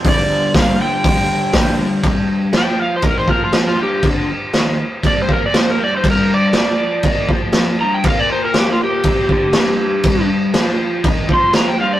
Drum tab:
CC |--------|x-x-x-x-|x-x-x-x-|x-x-x-x-|
HH |o-o-o-o-|--------|--------|--------|
SD |--o---o-|--o---o-|--o---o-|--o---o-|
BD |o-o-o-o-|o---oo--|o---oo--|o---oo--|

CC |x-x-x-x-|x-x-x-x-|
HH |--------|--------|
SD |--o---o-|--o---o-|
BD |o---oo--|o---oo--|